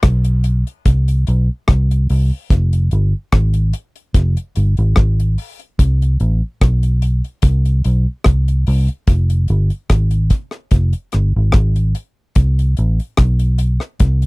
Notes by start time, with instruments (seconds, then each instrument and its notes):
0.03 fingered electric bass B1, kick, cross-stick, closed hi-hat
0.24 closed hi-hat
0.44 closed hi-hat
0.67 closed hi-hat
0.86 fingered electric bass C2, kick, closed hi-hat
1.08 closed hi-hat
1.27 fingered electric bass B1, closed hi-hat
1.68 fingered electric bass C2, kick, cross-stick, closed hi-hat
1.91 closed hi-hat
2.09 fingered electric bass C2, open hi-hat
2.50 fingered electric bass F1, kick, closed hi-hat
2.73 closed hi-hat
2.91 fingered electric bass G1, closed hi-hat
3.32 fingered electric bass G#1, kick, cross-stick, closed hi-hat
3.54 closed hi-hat
3.73 closed hi-hat
3.96 closed hi-hat
4.14 fingered electric bass F1, kick, closed hi-hat
4.37 closed hi-hat
4.56 fingered electric bass G1, closed hi-hat
4.77 fingered electric bass G#1, closed hi-hat
4.96 fingered electric bass G#1, kick, cross-stick, closed hi-hat
5.20 closed hi-hat
5.38 open hi-hat
5.59 closed hi-hat
5.79 fingered electric bass C2, kick, closed hi-hat
6.02 closed hi-hat
6.20 fingered electric bass A1, closed hi-hat
6.61 fingered electric bass B1, kick, cross-stick, closed hi-hat
6.83 closed hi-hat
7.02 closed hi-hat
7.24 closed hi-hat
7.42 fingered electric bass C2, kick, closed hi-hat
7.65 closed hi-hat
7.84 fingered electric bass B1, closed hi-hat
8.24 fingered electric bass C2, kick, cross-stick, closed hi-hat
8.48 closed hi-hat
8.67 fingered electric bass C2, open hi-hat
8.88 closed hi-hat
9.07 fingered electric bass F1, kick, closed hi-hat
9.30 closed hi-hat
9.48 fingered electric bass G1, closed hi-hat
9.70 closed hi-hat
9.90 fingered electric bass G#1, kick, cross-stick, closed hi-hat
10.11 closed hi-hat
10.30 kick, closed hi-hat
10.51 cross-stick, closed hi-hat
10.71 fingered electric bass F1, kick, closed hi-hat
10.93 closed hi-hat
11.12 fingered electric bass G1, cross-stick, closed hi-hat
11.36 fingered electric bass G#1
11.52 fingered electric bass G#1, kick, cross-stick, closed hi-hat
11.76 closed hi-hat
11.95 closed hi-hat
12.35 fingered electric bass C2, kick, closed hi-hat
12.59 closed hi-hat
12.77 fingered electric bass A1, closed hi-hat
13.00 closed hi-hat
13.17 fingered electric bass B1, kick, cross-stick, closed hi-hat
13.39 closed hi-hat
13.58 closed hi-hat
13.80 cross-stick, closed hi-hat
14.00 fingered electric bass C2, kick, closed hi-hat
14.22 closed hi-hat